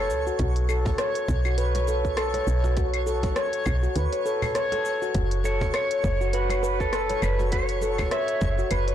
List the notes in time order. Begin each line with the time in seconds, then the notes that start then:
Already playing: F#1 C#5
0.09 C#2, cabasa
0.27 F#4, cabasa
0.39 B1 F#4, kick, closed hi-hat, cabasa
0.56 closed hi-hat, cabasa
0.69 A4, cajon slap, cabasa, claves
0.86 A1, kick, cajon bass, cajon slap, cabasa
0.98 C#5, cross-stick, closed hi-hat, cabasa
1.15 closed hi-hat, cabasa
1.28 B1, kick, cabasa
1.45 F#4, cabasa, claves
1.58 B4, closed hi-hat, cabasa
1.75 C#5, cajon slap, closed hi-hat, cabasa
1.88 A4, cabasa
2.05 kick, cabasa
2.17 A4, cross-stick, closed hi-hat, cabasa, claves
2.34 C#5, cajon slap, closed hi-hat, cabasa
2.47 B1, cabasa
2.64 F#4, cajon slap, cabasa
2.77 F#4, kick, closed hi-hat, cabasa
2.94 closed hi-hat, cabasa, claves
3.07 A4, cajon slap, cabasa
3.23 A1, cajon bass, kick, cajon slap, closed hi-hat, cabasa
3.36 C#5, cross-stick, closed hi-hat, cabasa
3.53 closed hi-hat, cabasa
3.66 B1, kick, cabasa, claves
3.83 F#4, cabasa
3.96 D2 B4, kick, closed hi-hat, cabasa
4.13 C#5, closed hi-hat, cabasa
4.25 A4, cabasa
4.42 cajon bass, cabasa, claves
4.55 C#5, cross-stick, closed hi-hat, cabasa
4.72 A4, cajon slap, closed hi-hat, cabasa
4.85 cabasa
5.02 F#4, cabasa
5.15 F#1 F#4, kick, closed hi-hat, cabasa
5.31 closed hi-hat, cabasa
5.44 A4 C#5, cajon slap, cabasa
5.61 E1, cajon bass, kick, cajon slap, cabasa
5.74 C#5, cross-stick, closed hi-hat, cabasa, claves
5.91 closed hi-hat, cabasa
6.04 F#1, kick, cabasa
6.21 F#4, cabasa
6.33 F#4 B4, closed hi-hat, cabasa
6.50 C#5, cajon slap, closed hi-hat, cabasa, claves
6.63 B4, cabasa
6.80 A4, kick, cabasa
6.93 A4, cross-stick, closed hi-hat, cabasa
7.10 C#5, cajon slap, closed hi-hat, cabasa
7.22 F#1 B4, cabasa, claves
7.39 F#4, cajon slap, cabasa
7.52 F#4 C#5, kick, closed hi-hat, cabasa
7.69 closed hi-hat, cabasa
7.81 A4, cajon slap, cabasa
7.98 E1, cajon bass, kick, cajon slap, cabasa, claves
8.11 C#5 E5, cross-stick, closed hi-hat, cabasa
8.28 closed hi-hat, cabasa
8.41 F#1, kick, cabasa
8.58 F#4, cabasa
8.71 F#1 B4, kick, closed hi-hat, cabasa, claves
8.88 C#5, closed hi-hat, cabasa